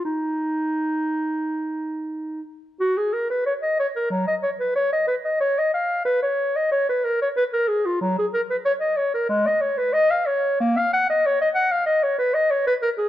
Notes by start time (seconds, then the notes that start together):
0.05 D#4
2.80 F#4
2.98 G#4
3.13 A#4
3.30 B4
3.46 C#5
3.62 D#5
3.80 C#5
3.96 A#4
4.10 F#3
4.28 D#5
4.43 C#5
4.60 B4
4.75 C#5
4.93 D#5
5.07 B4
5.25 D#5
5.40 C#5
5.59 D#5
5.74 F5
6.05 B4
6.22 C#5
6.56 D#5
6.71 C#5
6.89 B4
7.05 A#4
7.22 C#5
7.37 B4
7.53 A#4
7.68 G#4
7.86 F4
8.01 F#3
8.19 G#4
8.34 A#4
8.50 B4
8.65 C#5
8.81 D#5
8.97 C#5
9.14 A#4
9.29 G#3
9.47 D#5
9.61 C#5
9.78 B4
9.93 D#5
10.11 F5
10.26 C#5
10.60 A#3
10.78 F5
10.94 F#5
11.10 D#5
11.26 C#5
11.42 D#5
11.55 F#5
11.72 F5
11.86 D#5
12.03 C#5
12.19 B4
12.34 D#5
12.51 C#5
12.67 B4
12.82 A#4
12.98 G#4